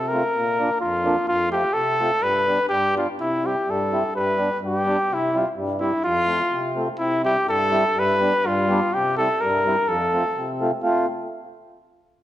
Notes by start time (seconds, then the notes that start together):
Already playing: C3
0.08 A#4
0.13 A3 C4 F4
0.35 A#2
0.59 A#3 D4 F4
0.81 F2 F4
1.05 A#3 D4 F4
1.28 F2 F4
1.51 A3 C4 F4 G4
1.73 C3 A4
2.00 A3 C4 F4
2.21 G2 B4
2.47 G3 B3 D4
2.69 G2 G4
2.94 G3 B3 D4 F4
3.19 C3 E4
3.43 G3 C4 E4 G4
3.67 G2 A4
3.92 G3 C4 E4
4.15 G2 B4
4.37 G3 B3 D4
4.61 G2
4.66 G4
4.85 G3 B3 D4
5.10 C3 E4
5.34 G3 C4 E4 F4
5.56 G2
5.80 G3 C4 E4
6.04 F2 F4
6.27 A3 C4 F4
6.52 C3
6.76 A3 C4 F4
6.98 C3 E4
7.23 G3 C4 E4 G4
7.46 G2 A4
7.71 G3 C4 E4
7.95 G2
7.99 B4
8.20 G3 B3 D4
8.45 G2 F4
8.69 G3 B3 D4
8.94 C3 G4
9.17 G3 C4 E4 A4
9.41 G2 A#4
9.66 G3 C4 E4
9.88 F2 A4
10.13 A3 C4 F4
10.35 C3
10.61 A3 C4 F4
10.83 A3 C4 F4